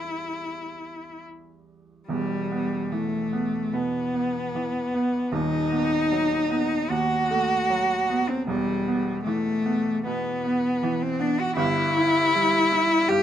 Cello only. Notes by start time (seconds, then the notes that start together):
Already playing: E4
2.09 G3
2.92 A3
3.74 B3
5.33 D#4
6.91 F#4
8.30 C4
8.48 G3
9.24 A3
10.06 B3
11.02 C4
11.21 D4
11.40 F#4
11.57 E4
13.09 G4